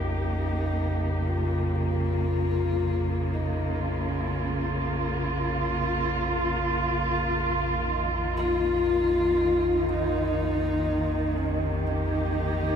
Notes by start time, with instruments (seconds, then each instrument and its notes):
Already playing: synth drone A#1 F2, cello section C#3 A#3 G4, horsehead fiddle D#4
1.28 horsehead fiddle F4
1.79 horsehead fiddle F4
3.34 horsehead fiddle D#4
3.45 cello section F4
3.85 horsehead fiddle C#4
7.86 cello section D#3
8.37 horsehead fiddle F4
9.89 horsehead fiddle D#4
11.38 horsehead fiddle C#4
11.47 cello section G4
11.88 horsehead fiddle D#4